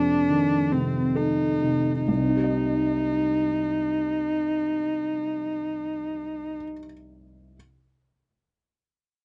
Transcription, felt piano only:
0.00 2.03 F2 soft
0.00 0.72 C3 soft
0.00 0.54 C4 soft
0.30 0.97 D#3 soft
0.72 1.42 C3 soft
1.15 1.89 A4 soft
1.61 2.08 C3 soft
2.08 6.57 C2 soft
2.15 6.64 C3 soft
2.22 6.71 C4 soft
2.29 6.78 D#4 soft
2.36 6.85 G4 soft
2.43 6.92 D#5 soft

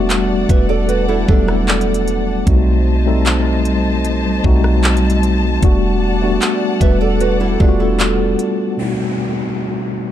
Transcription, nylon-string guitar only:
0.49 0.69 B4 medium
0.49 0.68 E5 medium
0.69 0.88 A4 medium
0.69 0.88 D5 medium
0.89 1.08 F#4 medium
0.89 1.08 B4 medium
1.08 1.28 E4 medium
1.08 1.27 A4 medium
1.28 1.47 D4 medium
1.28 1.47 G4 medium
1.48 2.43 E4 medium
1.48 2.43 A4 medium
6.81 7.00 B4 medium
6.81 7.00 E5 medium
7.01 7.20 A4 medium
7.01 7.20 D5 medium
7.21 7.40 F#4 medium
7.21 7.39 B4 medium
7.40 7.59 E4 medium
7.40 7.59 A4 medium
7.60 7.79 D4 medium
7.60 7.79 G4 medium
7.80 8.75 E4 medium
7.80 8.74 A4 medium

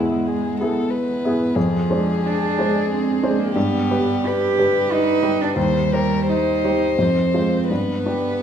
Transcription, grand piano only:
0.00 1.58 E2 soft
0.00 0.55 B3 soft
0.00 0.56 E4 soft
0.00 0.56 G#4 soft
0.61 1.20 B3 soft
0.61 1.20 E4 soft
0.61 1.21 G#4 soft
1.25 1.54 B3 soft
1.25 1.54 E4 soft
1.25 1.54 G#4 soft
1.56 1.90 F2 medium
1.90 2.56 G#3 soft
1.90 2.56 D4 soft
1.90 2.56 C5 soft
2.58 3.19 G#3 soft
2.58 3.19 D4 soft
2.58 3.20 C5 soft
3.23 3.52 G#3 soft
3.23 3.53 D4 soft
3.23 3.53 C5 soft
3.56 3.89 G2 medium
3.90 4.55 G3 soft
3.90 4.56 G4 soft
3.90 4.56 B4 soft
4.59 5.19 G3 soft
4.59 5.19 G4 soft
4.59 5.19 B4 soft
5.23 5.53 G3 soft
5.23 5.53 G4 soft
5.23 5.53 B4 soft
5.56 5.91 D#2 soft
5.93 6.61 G3 soft
5.93 6.61 G4 soft
5.93 6.61 C5 soft
6.64 6.95 G3 soft
6.64 6.96 G4 soft
6.64 6.96 C5 soft
6.99 7.33 F2 soft
7.34 7.66 G#3 soft
7.34 7.66 F4 soft
7.34 7.67 C5 soft
7.70 8.06 G2 soft
8.06 8.43 G3 soft
8.06 8.43 D4 soft
8.06 8.43 G4 soft

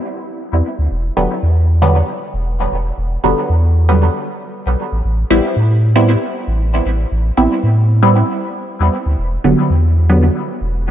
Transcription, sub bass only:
0.53 0.62 E2 medium
0.79 0.88 D2 medium
0.91 1.11 E1 loud
1.17 1.27 E1 loud
1.43 2.03 E2 loud
2.34 2.67 E1 loud
2.72 2.92 E1 medium
2.98 3.17 E1 loud
3.24 3.34 E1 loud
3.49 4.09 E2 loud
4.66 4.76 B1 medium
4.92 5.02 A1 medium
5.05 5.24 A1 loud
5.30 5.41 A1 medium
5.56 6.16 A2 medium
6.47 6.81 A1 loud
6.86 7.05 A1 medium
7.12 7.31 A1 loud
7.38 7.48 A1 loud
7.63 8.23 A2 loud
8.80 8.90 E2 medium
9.06 9.15 D2 medium
9.18 9.38 E1 loud
9.44 9.54 E1 loud
9.70 10.30 E2 loud
10.61 10.91 E1 loud

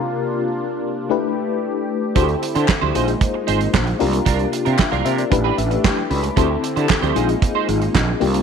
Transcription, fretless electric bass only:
2.16 2.34 D2 loud
2.55 2.64 D3 loud
2.82 2.91 D2 medium
2.95 3.13 A#1 medium
3.48 3.66 G#1 medium
3.74 3.92 A#1 loud
4.01 4.18 C2 loud
4.26 4.44 C2 loud
4.66 4.75 C3 loud
4.92 5.01 C2 loud
5.05 5.23 C3 medium
5.32 5.50 A1 loud
5.58 5.76 A1 loud
6.10 6.28 C#2 loud
6.37 6.55 D2 loud
6.76 6.85 D3 loud
7.02 7.12 D2 loud
7.16 7.34 A#1 loud
7.68 7.86 G#1 loud
7.95 8.13 A#1 medium
8.21 8.39 C2 loud

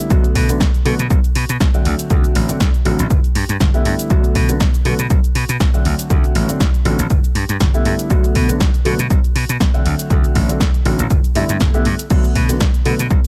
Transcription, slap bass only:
0.10 0.23 B1 loud
0.24 muted slap bass stroke soft
0.35 0.49 B2 medium
0.49 muted slap bass stroke soft
0.60 0.69 B1 medium
0.85 0.94 B2 medium
0.99 1.06 B2 medium
1.10 1.19 B1 loud
1.35 1.44 B2 medium
1.49 1.56 B2 medium
1.60 1.69 B1 medium
1.85 1.94 D2 medium
2.10 2.24 D2 loud
2.24 muted slap bass stroke soft
2.36 2.49 A1 medium
2.49 muted slap bass stroke soft
2.60 2.69 D2 medium
2.85 2.94 A1 medium
2.99 3.06 A1 medium
3.10 3.19 G1 loud
3.35 3.44 G2 medium
3.49 3.56 G2 medium
3.60 3.69 G1 medium
3.85 3.94 G2 medium
4.10 4.23 B1 loud
4.24 muted slap bass stroke soft
4.35 4.48 B2 medium
4.49 muted slap bass stroke soft
4.60 4.69 B1 medium
4.85 4.94 B2 medium
4.99 5.06 B2 medium
5.10 5.19 B1 loud
5.35 5.44 B2 medium
5.49 5.56 B2 medium
5.60 5.69 B1 medium
5.85 5.94 D2 medium
6.10 6.23 D2 loud
6.24 muted slap bass stroke soft
6.35 6.48 A1 medium
6.49 muted slap bass stroke soft
6.60 6.69 D2 medium
6.85 6.94 A1 medium
6.99 7.06 A1 medium
7.10 7.19 G1 loud
7.35 7.44 G2 medium
7.49 7.56 G2 medium
7.60 7.69 G1 medium
7.85 7.94 G2 medium
8.10 8.24 B1 loud
8.24 muted slap bass stroke soft
8.35 8.49 B2 medium
8.49 muted slap bass stroke soft
8.60 8.69 B1 medium
8.85 8.94 B2 medium
8.99 9.06 B2 medium
9.10 9.19 B1 loud
9.35 9.44 B2 medium
9.49 9.56 B2 medium
9.60 9.69 B1 medium
9.85 9.94 D2 medium
10.10 10.24 D2 loud
10.24 muted slap bass stroke soft
10.35 10.49 A1 medium
10.49 muted slap bass stroke soft
10.60 10.69 D2 medium
10.85 10.94 A1 medium
10.99 11.06 A1 medium
11.10 11.19 G1 medium
11.24 muted slap bass stroke soft
11.35 11.44 G2 medium
11.49 11.56 G2 medium
11.60 11.69 G1 medium
11.86 11.94 G2 loud
12.10 12.24 B1 loud
12.25 muted slap bass stroke soft
12.35 12.49 B2 medium
12.49 muted slap bass stroke soft
12.60 12.69 B1 medium
12.86 12.94 B2 medium
13.00 13.06 B2 medium
13.11 13.19 B1 loud

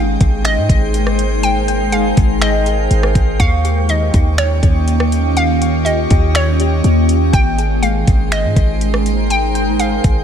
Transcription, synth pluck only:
0.00 0.42 F5 medium
0.45 0.91 D#5 loud
1.43 1.90 G5 loud
1.92 2.39 F5 medium
2.42 2.88 D#5 loud
3.40 3.86 F5 loud
3.90 4.36 D#5 medium
4.38 4.84 C#5 medium
5.37 5.83 F5 loud
5.85 6.32 D#5 medium
6.36 7.30 C#5 medium
7.34 7.80 G5 loud
7.82 8.29 F5 medium
8.32 8.78 D#5 loud
9.31 9.77 G5 loud
9.80 10.24 F5 medium

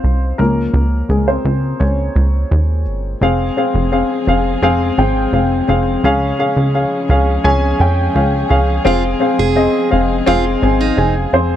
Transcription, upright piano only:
0.00 0.36 C4 medium
0.00 0.42 F4 medium
0.00 0.41 C5 medium
0.00 0.41 F5 medium
0.38 3.17 F3 soft
0.38 1.10 G#3 soft
0.38 1.06 A#3 medium
0.38 1.81 C#4 medium
0.38 1.05 A#4 medium
1.10 1.27 G#3 medium
1.10 1.26 G#4 medium
1.28 1.78 C4 medium
1.28 1.82 C5 medium
1.80 2.83 C#4 medium
1.80 2.82 C#5 medium
3.22 3.50 C4 medium
3.22 3.51 G#4 medium
3.22 3.51 F5 loud
3.57 3.85 C4 medium
3.57 3.86 G#4 medium
3.57 3.86 F5 medium
3.92 4.21 C4 medium
3.92 4.21 G#4 medium
3.92 4.21 F5 medium
4.27 4.56 C4 medium
4.27 4.56 G#4 medium
4.27 4.57 F5 medium
4.62 4.91 C4 loud
4.62 4.91 G#4 loud
4.62 4.92 F5 loud
4.98 5.26 C4 medium
4.98 5.27 G#4 medium
4.98 5.27 G5 medium
5.33 5.62 C4 medium
5.33 5.62 G#4 medium
5.33 5.62 F5 medium
5.68 5.97 C4 medium
5.68 5.97 G#4 medium
5.68 5.97 F5 medium
6.04 7.06 C#3 medium
6.04 6.33 C#4 medium
6.04 6.33 G#4 medium
6.04 6.33 F5 loud
6.39 6.68 C#4 medium
6.39 6.68 G#4 medium
6.39 6.68 F5 medium
6.74 7.03 C#4 medium
6.74 7.03 G#4 medium
6.74 7.03 F5 medium
7.10 7.38 C#4 medium
7.10 7.38 G#4 medium
7.10 7.39 F5 medium
7.44 7.73 C#4 loud
7.44 7.73 G#4 medium
7.44 7.73 G#5 loud
7.80 8.09 C#4 medium
7.80 8.09 G#4 medium
7.80 8.09 G5 medium
8.15 8.44 C#4 medium
8.15 8.44 G#4 medium
8.15 8.44 F5 medium
8.49 8.79 C#4 medium
8.49 8.79 G#4 medium
8.49 8.79 F5 medium
8.85 9.14 C4 loud
8.85 9.14 G#4 medium
8.85 9.14 F5 loud
9.20 9.49 C4 medium
9.20 9.50 G#4 medium
9.20 9.50 F5 medium
9.56 9.85 C4 medium
9.56 9.85 G#4 medium
9.56 9.85 D#5 medium
9.91 10.20 C4 medium
9.91 10.20 G#4 medium
9.91 10.20 F5 medium
10.26 10.55 C4 loud
10.26 10.55 G#4 loud
10.26 10.56 F5 loud
10.62 10.91 C4 medium
10.62 10.91 G#4 medium
10.62 10.91 G#5 medium
10.97 11.26 C4 medium
10.97 11.26 G#4 medium
10.97 11.26 G#5 medium
11.33 11.56 C4 medium
11.33 11.56 G#4 medium
11.33 11.56 C5 medium

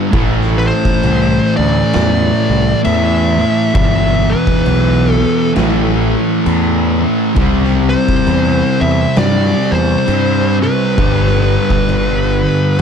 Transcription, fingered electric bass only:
0.13 0.70 A1 loud
1.04 1.38 C2 medium
1.59 1.81 D2 medium
1.95 2.29 E2 medium
2.49 2.72 C2 medium
2.86 3.43 E2 loud
3.75 4.32 G1 loud
4.66 5.23 B1 loud
5.57 6.14 A1 medium
6.46 7.03 E2 loud
7.37 7.94 C2 loud
8.27 8.61 E2 medium
8.81 9.04 E2 medium
9.17 9.51 G2 medium
9.72 9.95 E2 medium
10.08 10.65 G2 loud
10.98 11.55 G1 loud
11.89 12.46 G1 medium

